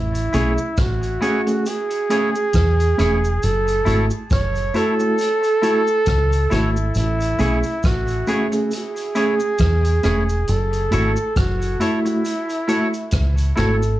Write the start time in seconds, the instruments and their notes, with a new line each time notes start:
Already playing: fingered electric bass A1, flugelhorn E4
0.15 closed hi-hat, cabasa
0.33 fingered electric bass B1, reed electric piano A3 C#4 G#4, clean electric guitar E4 G#4 C#5, closed hi-hat, cabasa
0.58 cabasa
0.77 fingered electric bass A1, flugelhorn F#4, kick, cross-stick, closed hi-hat, cabasa
1.03 closed hi-hat, cabasa
1.21 reed electric piano A3 C#4 G#4, clean electric guitar E4 G#4 C#5, closed hi-hat, cabasa
1.47 reed electric piano A3 C#4 G#4, muted clean electric guitar stroke, closed hi-hat, cabasa
1.66 flugelhorn G#4, closed hi-hat, cabasa
1.90 closed hi-hat, cabasa
2.09 reed electric piano A3 C#4 G#4, clean electric guitar E4 G#4 C#5, closed hi-hat, cabasa
2.35 cabasa
2.53 fingered electric bass E2, kick, cross-stick, closed hi-hat, cabasa
2.80 closed hi-hat, cabasa
2.98 fingered electric bass E1, reed electric piano A3 C#4 G#4, clean electric guitar E4 G#4 C#5, cross-stick, closed hi-hat, cabasa
3.24 cabasa
3.43 fingered electric bass F#1, flugelhorn A4, closed hi-hat, cabasa
3.68 closed hi-hat, cabasa
3.85 fingered electric bass G#1, reed electric piano A3 E4 F#4, clean electric guitar E4 A4 C#5, closed hi-hat, cabasa
4.10 cabasa
4.30 fingered electric bass F#1, flugelhorn C#5, kick, cross-stick, closed hi-hat, cabasa
4.55 closed hi-hat, cabasa
4.74 reed electric piano A3 E4 F#4, clean electric guitar E4 A4 C#5, flugelhorn A4, closed hi-hat, cabasa
4.99 reed electric piano A3 E4 F#4, muted clean electric guitar stroke, cabasa
5.18 closed hi-hat, cabasa
5.43 closed hi-hat, cabasa
5.62 reed electric piano A3 E4 F#4, clean electric guitar E4 A4 C#5, closed hi-hat, cabasa
5.87 cabasa
6.06 fingered electric bass C#2, kick, cross-stick, closed hi-hat, cabasa
6.32 closed hi-hat, cabasa
6.50 fingered electric bass G#1, reed electric piano A3 E4 F#4, clean electric guitar E4 A4 C#5, flugelhorn E4, cross-stick, closed hi-hat, cabasa
6.77 cabasa
6.95 fingered electric bass A1, flugelhorn E4, closed hi-hat, cabasa
7.20 closed hi-hat, cabasa
7.39 fingered electric bass B1, reed electric piano A3 C#4 G#4, clean electric guitar E4 G#4 C#5, closed hi-hat, cabasa
7.63 closed hi-hat, cabasa
7.83 fingered electric bass A1, flugelhorn F#4, kick, cross-stick, closed hi-hat, cabasa
8.08 closed hi-hat, cabasa
8.27 reed electric piano A3 C#4 G#4, clean electric guitar E4 G#4 C#5, closed hi-hat, cabasa
8.52 reed electric piano A3 C#4 G#4, muted clean electric guitar stroke, closed hi-hat, cabasa
8.71 flugelhorn G#4, closed hi-hat, cabasa
8.96 closed hi-hat, cabasa
9.15 reed electric piano A3 C#4 G#4, clean electric guitar E4 G#4 C#5, closed hi-hat, cabasa
9.40 cabasa
9.58 fingered electric bass E2, kick, cross-stick, closed hi-hat, cabasa
9.85 closed hi-hat, cabasa
10.03 fingered electric bass E1, reed electric piano A3 C#4 G#4, clean electric guitar E4 G#4 C#5, cross-stick, closed hi-hat, cabasa
10.29 closed hi-hat, cabasa
10.48 fingered electric bass F#1, flugelhorn A4, closed hi-hat, cabasa
10.73 closed hi-hat, cabasa
10.91 fingered electric bass G#1, reed electric piano A3 E4 F#4, clean electric guitar E4 A4 C#5, closed hi-hat, cabasa
11.16 cabasa
11.36 fingered electric bass F#1, flugelhorn F#4, kick, cross-stick, closed hi-hat, cabasa
11.62 closed hi-hat, cabasa
11.80 reed electric piano A3 E4 F#4, clean electric guitar E4 A4 C#5, flugelhorn E4, closed hi-hat, cabasa
12.05 reed electric piano A3 E4 F#4, muted clean electric guitar stroke, closed hi-hat, cabasa
12.25 closed hi-hat, cabasa
12.49 closed hi-hat, cabasa
12.68 reed electric piano A3 E4 F#4, clean electric guitar E4 A4 C#5, closed hi-hat, cabasa
12.94 closed hi-hat, cabasa
13.11 fingered electric bass C#2, kick, cross-stick, closed hi-hat, cabasa
13.37 closed hi-hat, cabasa
13.56 fingered electric bass G#1, reed electric piano A3 E4 F#4, clean electric guitar E4 A4 C#5, flugelhorn A4, cross-stick, closed hi-hat, cabasa
13.82 closed hi-hat, cabasa